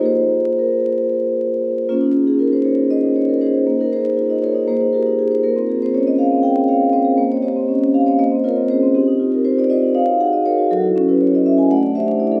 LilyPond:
\new Staff \with { instrumentName = "Vibraphone" } { \time 7/8 \key c \phrygian \tempo 4 = 119 << { c''4 bes'2 r8 | <des' f'>8. aes'16 bes'16 c''16 <bes' des''>8 <c'' ees''>8 des''16 bes'16 <aes' c''>8~ | <aes' c''>16 bes'16 <aes' c''>8. ees''16 <bes' des''>8 <aes' c''>8 <g' bes'>8 aes'16 c''16 | <f' bes'>8. c''16 des''16 ees''16 <des'' f''>8 <ees'' g''>8 <des'' f''>8 <c'' ees''>8 |
c''16 des''16 <c'' ees''>4 f''16 des''16 <c'' ees''>8 <bes' des''>8 <aes' c''>8 | <ees' g'>8. bes'16 c''16 d''16 <c'' ees''>8 <des'' f''>8 ges''16 ees''16 <bes' des''>8 | <ges' a'>8. ces''16 des''16 ees''16 e''16 aes''16 <d'' ges''>8 <c'' e''>8 d''16 a'16 | } \\ { <bes f' aes'>2.~ <bes f' aes'>8 | bes16 ees'16 aes'16 ees'16 f'16 ees'16 aes'16 ees'16 aes'16 ees'16 aes'8 ees'16 aes'16 | bes16 ees'8 ees'16 f'16 ees'16 aes'16 ees'16 bes16 ees'16 f'16 ees'16 f'16 ees'16 | bes16 c'16 aes'16 c'16 des'16 c'16 aes'16 c'16 aes'16 c'16 aes'16 bes'16 c'16 aes'16 |
bes16 c'16 g'16 c'16 des'16 c'16 g'16 c'16 bes16 c'16 f'16 c'16 des'16 c'16 | c'16 ees'16 f'16 ees'16 f'16 ees'16 f'16 ees'16 ees'16 ges'16 aes'16 ges'16 aes'16 ges'16 | ges16 e'16 des'16 e'16 ges'16 e'16 des'16 e'16 a16 d'16 g'16 d'16 e'16 d'16 | } >> }